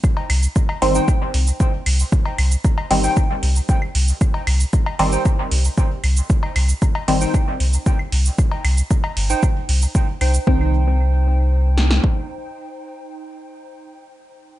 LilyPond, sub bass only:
\new Staff \with { instrumentName = "Sub bass" } { \clef bass \time 4/4 \key c \minor \tempo 4 = 115 r8 c,8 r8 g,,8 r8 c,8 r8 c,8 | r8 c,8 r8 g,,8 r8 c,8 r8 c,8 | r8 c,8 r8 g,,8 r8 c,8 r8 c,8 | r8 c,8 r8 g,,8 r8 c,8 r8 c,8 |
r8 c,8 r8 g,,8 r8 c,8 r8 c,8 | c,2. r4 | r1 | }